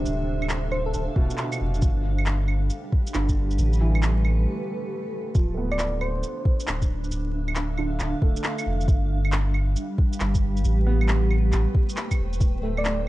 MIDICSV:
0, 0, Header, 1, 6, 480
1, 0, Start_track
1, 0, Tempo, 441176
1, 61, Time_signature, 4, 2, 24, 8
1, 14235, End_track
2, 0, Start_track
2, 0, Title_t, "Soft synth lead"
2, 0, Program_c, 0, 80
2, 780, Note_on_c, 0, 72, 88
2, 907, Note_off_c, 0, 72, 0
2, 936, Note_on_c, 0, 69, 88
2, 990, Note_off_c, 0, 69, 0
2, 1026, Note_on_c, 0, 69, 80
2, 1125, Note_off_c, 0, 69, 0
2, 6219, Note_on_c, 0, 74, 92
2, 6467, Note_off_c, 0, 74, 0
2, 6541, Note_on_c, 0, 72, 96
2, 7229, Note_off_c, 0, 72, 0
2, 13907, Note_on_c, 0, 74, 90
2, 14152, Note_off_c, 0, 74, 0
2, 14235, End_track
3, 0, Start_track
3, 0, Title_t, "Ambient pad"
3, 0, Program_c, 1, 92
3, 0, Note_on_c, 1, 62, 80
3, 0, Note_on_c, 1, 69, 86
3, 0, Note_on_c, 1, 72, 81
3, 0, Note_on_c, 1, 76, 90
3, 0, Note_on_c, 1, 77, 71
3, 1977, Note_off_c, 1, 76, 0
3, 1981, Note_off_c, 1, 72, 0
3, 1988, Note_on_c, 1, 55, 71
3, 2248, Note_on_c, 1, 67, 76
3, 2761, Note_off_c, 1, 62, 0
3, 2771, Note_on_c, 1, 71, 75
3, 3896, Note_off_c, 1, 77, 0
3, 3897, Note_off_c, 1, 69, 0
3, 3904, Note_off_c, 1, 55, 0
3, 4686, Note_off_c, 1, 67, 0
3, 4861, Note_off_c, 1, 71, 0
3, 5814, Note_on_c, 1, 62, 88
3, 7276, Note_on_c, 1, 76, 82
3, 7311, Note_on_c, 1, 77, 69
3, 9658, Note_off_c, 1, 76, 0
3, 9660, Note_on_c, 1, 55, 74
3, 10092, Note_on_c, 1, 67, 93
3, 10441, Note_off_c, 1, 62, 0
3, 10553, Note_on_c, 1, 71, 79
3, 11575, Note_on_c, 1, 57, 84
3, 11581, Note_off_c, 1, 55, 0
3, 11581, Note_off_c, 1, 77, 0
3, 11850, Note_on_c, 1, 79, 72
3, 12359, Note_off_c, 1, 67, 0
3, 12473, Note_on_c, 1, 72, 69
3, 13498, Note_off_c, 1, 57, 0
3, 13500, Note_off_c, 1, 71, 0
3, 13500, Note_on_c, 1, 62, 80
3, 14235, Note_off_c, 1, 62, 0
3, 14235, Note_off_c, 1, 72, 0
3, 14235, Note_off_c, 1, 79, 0
3, 14235, End_track
4, 0, Start_track
4, 0, Title_t, "Felt piano"
4, 0, Program_c, 2, 0
4, 0, Control_c, 2, 64, 127
4, 0, Note_on_c, 2, 48, 52
4, 0, Note_on_c, 2, 50, 80
4, 0, Note_on_c, 2, 53, 48
4, 0, Note_on_c, 2, 55, 52
4, 166, Note_off_c, 2, 55, 0
4, 591, Note_off_c, 2, 48, 0
4, 1260, Note_on_c, 2, 47, 78
4, 1996, Control_c, 2, 64, 0
4, 2003, Note_off_c, 2, 53, 0
4, 2005, Note_off_c, 2, 50, 0
4, 2032, Note_off_c, 2, 47, 0
4, 2169, Control_c, 2, 64, 127
4, 3421, Note_on_c, 2, 50, 80
4, 3915, Control_c, 2, 64, 0
4, 4083, Control_c, 2, 64, 127
4, 4098, Note_off_c, 2, 50, 0
4, 4143, Note_on_c, 2, 52, 76
4, 4913, Note_off_c, 2, 52, 0
4, 5820, Note_on_c, 2, 53, 68
4, 5837, Control_c, 2, 64, 0
4, 6032, Note_on_c, 2, 57, 50
4, 6050, Control_c, 2, 64, 127
4, 6065, Note_on_c, 2, 59, 72
4, 6592, Note_off_c, 2, 53, 0
4, 6731, Note_off_c, 2, 57, 0
4, 6834, Note_off_c, 2, 59, 0
4, 8469, Note_on_c, 2, 50, 55
4, 8947, Note_on_c, 2, 57, 65
4, 9236, Note_off_c, 2, 50, 0
4, 9676, Control_c, 2, 64, 0
4, 9715, Note_off_c, 2, 57, 0
4, 11804, Control_c, 2, 64, 127
4, 11821, Note_on_c, 2, 59, 73
4, 12592, Note_off_c, 2, 59, 0
4, 13517, Control_c, 2, 64, 0
4, 13708, Control_c, 2, 64, 127
4, 13741, Note_on_c, 2, 57, 54
4, 14235, Note_off_c, 2, 57, 0
4, 14235, End_track
5, 0, Start_track
5, 0, Title_t, "Sub bass"
5, 0, Program_c, 3, 38
5, 66, Note_on_c, 3, 26, 91
5, 1013, Note_off_c, 3, 26, 0
5, 1025, Note_on_c, 3, 26, 75
5, 1169, Note_off_c, 3, 26, 0
5, 1263, Note_on_c, 3, 26, 83
5, 1408, Note_off_c, 3, 26, 0
5, 1749, Note_on_c, 3, 29, 83
5, 1972, Note_off_c, 3, 29, 0
5, 1986, Note_on_c, 3, 31, 97
5, 2933, Note_off_c, 3, 31, 0
5, 3424, Note_on_c, 3, 31, 79
5, 3892, Note_off_c, 3, 31, 0
5, 3905, Note_on_c, 3, 33, 92
5, 4853, Note_off_c, 3, 33, 0
5, 5824, Note_on_c, 3, 26, 94
5, 6772, Note_off_c, 3, 26, 0
5, 7268, Note_on_c, 3, 26, 79
5, 7734, Note_off_c, 3, 26, 0
5, 7745, Note_on_c, 3, 26, 92
5, 8693, Note_off_c, 3, 26, 0
5, 8701, Note_on_c, 3, 26, 76
5, 8847, Note_off_c, 3, 26, 0
5, 8941, Note_on_c, 3, 26, 86
5, 9087, Note_off_c, 3, 26, 0
5, 9425, Note_on_c, 3, 29, 85
5, 9650, Note_off_c, 3, 29, 0
5, 9661, Note_on_c, 3, 31, 95
5, 10611, Note_off_c, 3, 31, 0
5, 11104, Note_on_c, 3, 31, 82
5, 11572, Note_off_c, 3, 31, 0
5, 11585, Note_on_c, 3, 33, 97
5, 12533, Note_off_c, 3, 33, 0
5, 12545, Note_on_c, 3, 33, 80
5, 12689, Note_off_c, 3, 33, 0
5, 13260, Note_on_c, 3, 28, 99
5, 13488, Note_off_c, 3, 28, 0
5, 13498, Note_on_c, 3, 26, 98
5, 14235, Note_off_c, 3, 26, 0
5, 14235, End_track
6, 0, Start_track
6, 0, Title_t, "Drums"
6, 61, Note_on_c, 9, 82, 48
6, 169, Note_off_c, 9, 82, 0
6, 457, Note_on_c, 9, 75, 60
6, 536, Note_on_c, 9, 39, 96
6, 536, Note_on_c, 9, 82, 52
6, 566, Note_off_c, 9, 75, 0
6, 645, Note_off_c, 9, 39, 0
6, 645, Note_off_c, 9, 82, 0
6, 778, Note_on_c, 9, 75, 50
6, 887, Note_off_c, 9, 75, 0
6, 1019, Note_on_c, 9, 82, 51
6, 1127, Note_off_c, 9, 82, 0
6, 1261, Note_on_c, 9, 36, 93
6, 1370, Note_off_c, 9, 36, 0
6, 1418, Note_on_c, 9, 82, 50
6, 1497, Note_off_c, 9, 82, 0
6, 1497, Note_on_c, 9, 39, 93
6, 1497, Note_on_c, 9, 82, 51
6, 1606, Note_off_c, 9, 39, 0
6, 1606, Note_off_c, 9, 82, 0
6, 1655, Note_on_c, 9, 75, 66
6, 1655, Note_on_c, 9, 82, 50
6, 1764, Note_off_c, 9, 75, 0
6, 1764, Note_off_c, 9, 82, 0
6, 1897, Note_on_c, 9, 82, 27
6, 1979, Note_off_c, 9, 82, 0
6, 1979, Note_on_c, 9, 82, 51
6, 1983, Note_on_c, 9, 36, 114
6, 2087, Note_off_c, 9, 82, 0
6, 2091, Note_off_c, 9, 36, 0
6, 2377, Note_on_c, 9, 75, 64
6, 2459, Note_on_c, 9, 39, 98
6, 2459, Note_on_c, 9, 82, 54
6, 2486, Note_off_c, 9, 75, 0
6, 2568, Note_off_c, 9, 39, 0
6, 2568, Note_off_c, 9, 82, 0
6, 2698, Note_on_c, 9, 75, 55
6, 2807, Note_off_c, 9, 75, 0
6, 2937, Note_on_c, 9, 82, 55
6, 3046, Note_off_c, 9, 82, 0
6, 3182, Note_on_c, 9, 36, 95
6, 3291, Note_off_c, 9, 36, 0
6, 3339, Note_on_c, 9, 82, 55
6, 3419, Note_off_c, 9, 82, 0
6, 3419, Note_on_c, 9, 39, 99
6, 3419, Note_on_c, 9, 82, 54
6, 3528, Note_off_c, 9, 39, 0
6, 3528, Note_off_c, 9, 82, 0
6, 3578, Note_on_c, 9, 82, 51
6, 3581, Note_on_c, 9, 36, 55
6, 3687, Note_off_c, 9, 82, 0
6, 3689, Note_off_c, 9, 36, 0
6, 3818, Note_on_c, 9, 82, 29
6, 3900, Note_off_c, 9, 82, 0
6, 3900, Note_on_c, 9, 82, 52
6, 4009, Note_off_c, 9, 82, 0
6, 4058, Note_on_c, 9, 82, 30
6, 4167, Note_off_c, 9, 82, 0
6, 4298, Note_on_c, 9, 75, 64
6, 4381, Note_on_c, 9, 39, 98
6, 4381, Note_on_c, 9, 82, 57
6, 4407, Note_off_c, 9, 75, 0
6, 4490, Note_off_c, 9, 39, 0
6, 4490, Note_off_c, 9, 82, 0
6, 4621, Note_on_c, 9, 75, 56
6, 4730, Note_off_c, 9, 75, 0
6, 5819, Note_on_c, 9, 82, 52
6, 5821, Note_on_c, 9, 36, 115
6, 5928, Note_off_c, 9, 82, 0
6, 5930, Note_off_c, 9, 36, 0
6, 6219, Note_on_c, 9, 75, 62
6, 6298, Note_on_c, 9, 39, 102
6, 6298, Note_on_c, 9, 82, 55
6, 6327, Note_off_c, 9, 75, 0
6, 6407, Note_off_c, 9, 39, 0
6, 6407, Note_off_c, 9, 82, 0
6, 6539, Note_on_c, 9, 75, 57
6, 6648, Note_off_c, 9, 75, 0
6, 6780, Note_on_c, 9, 82, 55
6, 6889, Note_off_c, 9, 82, 0
6, 7021, Note_on_c, 9, 36, 100
6, 7129, Note_off_c, 9, 36, 0
6, 7180, Note_on_c, 9, 82, 58
6, 7262, Note_off_c, 9, 82, 0
6, 7262, Note_on_c, 9, 39, 104
6, 7262, Note_on_c, 9, 82, 55
6, 7371, Note_off_c, 9, 39, 0
6, 7371, Note_off_c, 9, 82, 0
6, 7420, Note_on_c, 9, 36, 58
6, 7420, Note_on_c, 9, 82, 58
6, 7528, Note_off_c, 9, 82, 0
6, 7529, Note_off_c, 9, 36, 0
6, 7661, Note_on_c, 9, 82, 31
6, 7741, Note_off_c, 9, 82, 0
6, 7741, Note_on_c, 9, 82, 57
6, 7850, Note_off_c, 9, 82, 0
6, 8138, Note_on_c, 9, 75, 65
6, 8220, Note_on_c, 9, 39, 107
6, 8220, Note_on_c, 9, 82, 58
6, 8247, Note_off_c, 9, 75, 0
6, 8328, Note_off_c, 9, 39, 0
6, 8328, Note_off_c, 9, 82, 0
6, 8460, Note_on_c, 9, 75, 50
6, 8568, Note_off_c, 9, 75, 0
6, 8701, Note_on_c, 9, 39, 59
6, 8701, Note_on_c, 9, 82, 59
6, 8809, Note_off_c, 9, 39, 0
6, 8809, Note_off_c, 9, 82, 0
6, 8942, Note_on_c, 9, 36, 100
6, 9050, Note_off_c, 9, 36, 0
6, 9100, Note_on_c, 9, 82, 56
6, 9181, Note_off_c, 9, 82, 0
6, 9181, Note_on_c, 9, 39, 107
6, 9181, Note_on_c, 9, 82, 57
6, 9289, Note_off_c, 9, 39, 0
6, 9289, Note_off_c, 9, 82, 0
6, 9340, Note_on_c, 9, 75, 66
6, 9340, Note_on_c, 9, 82, 59
6, 9449, Note_off_c, 9, 75, 0
6, 9449, Note_off_c, 9, 82, 0
6, 9583, Note_on_c, 9, 82, 32
6, 9662, Note_on_c, 9, 36, 114
6, 9664, Note_off_c, 9, 82, 0
6, 9664, Note_on_c, 9, 82, 54
6, 9771, Note_off_c, 9, 36, 0
6, 9773, Note_off_c, 9, 82, 0
6, 10061, Note_on_c, 9, 75, 62
6, 10143, Note_on_c, 9, 39, 110
6, 10143, Note_on_c, 9, 82, 56
6, 10170, Note_off_c, 9, 75, 0
6, 10252, Note_off_c, 9, 39, 0
6, 10252, Note_off_c, 9, 82, 0
6, 10381, Note_on_c, 9, 75, 50
6, 10490, Note_off_c, 9, 75, 0
6, 10621, Note_on_c, 9, 82, 57
6, 10729, Note_off_c, 9, 82, 0
6, 10861, Note_on_c, 9, 36, 104
6, 10970, Note_off_c, 9, 36, 0
6, 11020, Note_on_c, 9, 82, 56
6, 11100, Note_off_c, 9, 82, 0
6, 11100, Note_on_c, 9, 39, 106
6, 11100, Note_on_c, 9, 82, 57
6, 11209, Note_off_c, 9, 39, 0
6, 11209, Note_off_c, 9, 82, 0
6, 11258, Note_on_c, 9, 82, 56
6, 11259, Note_on_c, 9, 36, 63
6, 11366, Note_off_c, 9, 82, 0
6, 11368, Note_off_c, 9, 36, 0
6, 11498, Note_on_c, 9, 82, 31
6, 11583, Note_off_c, 9, 82, 0
6, 11583, Note_on_c, 9, 82, 52
6, 11692, Note_off_c, 9, 82, 0
6, 11980, Note_on_c, 9, 75, 60
6, 12060, Note_on_c, 9, 39, 106
6, 12060, Note_on_c, 9, 82, 55
6, 12089, Note_off_c, 9, 75, 0
6, 12169, Note_off_c, 9, 39, 0
6, 12169, Note_off_c, 9, 82, 0
6, 12300, Note_on_c, 9, 75, 52
6, 12409, Note_off_c, 9, 75, 0
6, 12538, Note_on_c, 9, 39, 64
6, 12538, Note_on_c, 9, 82, 53
6, 12647, Note_off_c, 9, 39, 0
6, 12647, Note_off_c, 9, 82, 0
6, 12779, Note_on_c, 9, 36, 103
6, 12888, Note_off_c, 9, 36, 0
6, 12938, Note_on_c, 9, 82, 53
6, 13021, Note_off_c, 9, 82, 0
6, 13021, Note_on_c, 9, 39, 108
6, 13021, Note_on_c, 9, 82, 51
6, 13129, Note_off_c, 9, 39, 0
6, 13129, Note_off_c, 9, 82, 0
6, 13176, Note_on_c, 9, 75, 61
6, 13176, Note_on_c, 9, 82, 55
6, 13177, Note_on_c, 9, 36, 58
6, 13285, Note_off_c, 9, 75, 0
6, 13285, Note_off_c, 9, 82, 0
6, 13286, Note_off_c, 9, 36, 0
6, 13416, Note_on_c, 9, 82, 31
6, 13497, Note_off_c, 9, 82, 0
6, 13497, Note_on_c, 9, 82, 51
6, 13498, Note_on_c, 9, 36, 109
6, 13606, Note_off_c, 9, 82, 0
6, 13607, Note_off_c, 9, 36, 0
6, 13897, Note_on_c, 9, 75, 58
6, 13980, Note_on_c, 9, 39, 99
6, 13980, Note_on_c, 9, 82, 52
6, 14006, Note_off_c, 9, 75, 0
6, 14089, Note_off_c, 9, 39, 0
6, 14089, Note_off_c, 9, 82, 0
6, 14235, End_track
0, 0, End_of_file